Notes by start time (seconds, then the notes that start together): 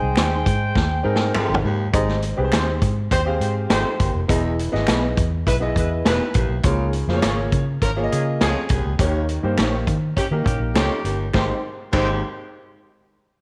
Already playing: G#2 G#3 C4 D#4 G#4 C5 D#5 G5
0.02 C2
0.16 D#2 G#3 D#4 G4 C5, finger snap, snare, closed hi-hat
0.46 G#2, kick, closed hi-hat
0.75 D#2, kick, snare
1.03 G#2 C4 D#4 G#4 A#4 G5
1.16 snare
1.34 F2 G#3 D#4 G4 C5, finger snap, muted fingered electric bass stroke, mid tom
1.50 G#1
1.54 floor tom
1.64 D#2 G#2
1.93 G#1 G#2 C4 G4 G#4 D#5, kick, closed hi-hat
2.09 snare
2.22 closed hi-hat
2.37 C2 C4 G4 G#4 B4
2.45 C5
2.52 D#2 C4 D#4 G4 C5, finger snap, snare, closed hi-hat
2.82 G#2, kick, closed hi-hat
3.11 D#2 G#3 G4 C5, kick, closed hi-hat
3.25 C4 G4 G#4 F5
3.40 G#2 G#3 G4 C5, closed hi-hat
3.69 G#1 F2 G#3 C4 D#4 G4 C5, finger snap, snare, closed hi-hat
4.00 G1 D#2, kick, closed hi-hat
4.15 F1
4.28 E1 E2 E3 B3 E4 G#4 D#5, kick, closed hi-hat
4.59 closed hi-hat
4.72 G#1 B3 E4 G#4 D#5, snare
4.87 B1 B3 D#4 G#4 B4, finger snap, snare, closed hi-hat
5.17 E2, kick, closed hi-hat
5.47 B1 G#3 E4 B4, kick, closed hi-hat
5.60 B3 E4 G#4 D#5
5.76 E2 G#3 E4 B4, kick, closed hi-hat
6.05 E1 D#2 G#3 B3 D#4 E4 G#4 B4, finger snap, snare, closed hi-hat
6.34 A#1 D#2, kick, closed hi-hat
6.49 B1
6.63 C#2 G#2 C#3 A#3 F4 G#4 C#5, kick, closed hi-hat
6.93 closed hi-hat
7.08 F2 A#3 F4 G#4 C5, snare
7.17 C#5
7.22 G#1 A#3 F4 G#4 C#5, finger snap, snare, closed hi-hat
7.52 C#3, kick, closed hi-hat
7.81 G#1 F3 C#4 A#4, kick, closed hi-hat
7.96 A#3 F4 G#4 C#5
8.04 D#5
8.11 C#3 F3 C#4 G#4, closed hi-hat
8.41 C#2 F2 F3 A#3 C#4 F4 G#4 C#5, finger snap, snare, closed hi-hat
8.69 C2 D#2, kick, closed hi-hat
8.85 C#2
8.99 D#2 D#3 A#3 D#4 G4 C#5, kick, closed hi-hat
9.29 closed hi-hat
9.43 G2 A#3 D#4 G4 C5
9.58 A#1 A#3 D#4 G4 C#5, finger snap, snare, closed hi-hat
9.87 D#3, kick, closed hi-hat
10.17 D#3 C#4 G4, kick, closed hi-hat
10.31 D#3 A#3 D#4 G4 A#4
10.44 A#2 D#3 C#4 G4, kick, closed hi-hat
10.60 A#1
10.75 C#2 F2 D#3 A#3 C#4 D#4 G4 C#5, finger snap, snare, closed hi-hat
11.04 G1 D#2, closed hi-hat
11.34 G#1 D#2 D#3 G#3 C4 D#4 G4 C5, finger snap, kick, snare
11.92 G#1 D#2 D#3 G#3 C4 D#4 G4 C5, finger snap, kick, crash